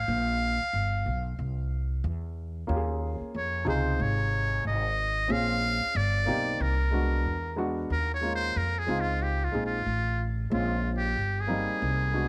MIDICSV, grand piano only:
0, 0, Header, 1, 2, 480
1, 0, Start_track
1, 0, Tempo, 652174
1, 54, Time_signature, 4, 2, 24, 8
1, 9040, End_track
2, 0, Start_track
2, 0, Title_t, "Grand piano"
2, 0, Program_c, 0, 0
2, 1966, Note_on_c, 0, 58, 69
2, 1973, Note_on_c, 0, 61, 66
2, 1980, Note_on_c, 0, 65, 65
2, 1986, Note_on_c, 0, 67, 62
2, 2033, Note_on_c, 0, 68, 76
2, 2036, Note_off_c, 0, 67, 0
2, 2650, Note_off_c, 0, 58, 0
2, 2653, Note_off_c, 0, 61, 0
2, 2657, Note_off_c, 0, 65, 0
2, 2683, Note_off_c, 0, 68, 0
2, 2686, Note_on_c, 0, 48, 84
2, 2694, Note_on_c, 0, 63, 76
2, 2699, Note_on_c, 0, 65, 75
2, 2705, Note_on_c, 0, 68, 92
2, 3553, Note_off_c, 0, 48, 0
2, 3557, Note_off_c, 0, 63, 0
2, 3560, Note_off_c, 0, 65, 0
2, 3562, Note_off_c, 0, 68, 0
2, 3885, Note_on_c, 0, 60, 65
2, 3891, Note_on_c, 0, 61, 60
2, 3898, Note_on_c, 0, 65, 58
2, 3903, Note_on_c, 0, 68, 68
2, 4370, Note_off_c, 0, 60, 0
2, 4373, Note_off_c, 0, 61, 0
2, 4376, Note_off_c, 0, 65, 0
2, 4379, Note_off_c, 0, 68, 0
2, 4607, Note_on_c, 0, 58, 79
2, 4613, Note_on_c, 0, 60, 66
2, 4619, Note_on_c, 0, 63, 68
2, 4624, Note_on_c, 0, 67, 83
2, 4961, Note_off_c, 0, 58, 0
2, 4964, Note_off_c, 0, 60, 0
2, 4967, Note_off_c, 0, 63, 0
2, 4970, Note_off_c, 0, 67, 0
2, 5085, Note_on_c, 0, 56, 66
2, 5091, Note_on_c, 0, 59, 55
2, 5098, Note_on_c, 0, 62, 58
2, 5104, Note_on_c, 0, 66, 70
2, 5385, Note_off_c, 0, 56, 0
2, 5388, Note_off_c, 0, 59, 0
2, 5391, Note_off_c, 0, 62, 0
2, 5395, Note_off_c, 0, 66, 0
2, 5566, Note_on_c, 0, 56, 73
2, 5571, Note_on_c, 0, 59, 68
2, 5578, Note_on_c, 0, 62, 68
2, 5582, Note_on_c, 0, 66, 85
2, 5810, Note_off_c, 0, 56, 0
2, 5813, Note_off_c, 0, 59, 0
2, 5816, Note_off_c, 0, 62, 0
2, 5819, Note_off_c, 0, 66, 0
2, 6044, Note_on_c, 0, 56, 64
2, 6051, Note_on_c, 0, 58, 59
2, 6056, Note_on_c, 0, 61, 54
2, 6064, Note_on_c, 0, 65, 69
2, 6345, Note_off_c, 0, 56, 0
2, 6348, Note_off_c, 0, 58, 0
2, 6350, Note_off_c, 0, 61, 0
2, 6355, Note_off_c, 0, 65, 0
2, 6526, Note_on_c, 0, 56, 75
2, 6532, Note_on_c, 0, 60, 69
2, 6539, Note_on_c, 0, 63, 67
2, 6545, Note_on_c, 0, 65, 85
2, 6961, Note_off_c, 0, 56, 0
2, 6965, Note_off_c, 0, 60, 0
2, 6968, Note_off_c, 0, 63, 0
2, 6971, Note_off_c, 0, 65, 0
2, 7006, Note_on_c, 0, 56, 66
2, 7013, Note_on_c, 0, 60, 55
2, 7019, Note_on_c, 0, 63, 60
2, 7025, Note_on_c, 0, 68, 75
2, 7189, Note_off_c, 0, 56, 0
2, 7193, Note_off_c, 0, 60, 0
2, 7196, Note_off_c, 0, 63, 0
2, 7198, Note_off_c, 0, 68, 0
2, 7729, Note_on_c, 0, 56, 59
2, 7734, Note_on_c, 0, 60, 55
2, 7741, Note_on_c, 0, 61, 56
2, 7746, Note_on_c, 0, 65, 61
2, 8212, Note_off_c, 0, 56, 0
2, 8215, Note_off_c, 0, 60, 0
2, 8218, Note_off_c, 0, 61, 0
2, 8220, Note_off_c, 0, 65, 0
2, 8445, Note_on_c, 0, 58, 76
2, 8452, Note_on_c, 0, 60, 69
2, 8457, Note_on_c, 0, 63, 70
2, 8464, Note_on_c, 0, 55, 81
2, 8923, Note_on_c, 0, 56, 61
2, 8930, Note_on_c, 0, 59, 56
2, 8936, Note_on_c, 0, 62, 57
2, 8942, Note_on_c, 0, 66, 67
2, 9040, Note_off_c, 0, 55, 0
2, 9040, Note_off_c, 0, 56, 0
2, 9040, Note_off_c, 0, 58, 0
2, 9040, Note_off_c, 0, 59, 0
2, 9040, Note_off_c, 0, 60, 0
2, 9040, Note_off_c, 0, 62, 0
2, 9040, Note_off_c, 0, 63, 0
2, 9040, Note_off_c, 0, 66, 0
2, 9040, End_track
0, 0, End_of_file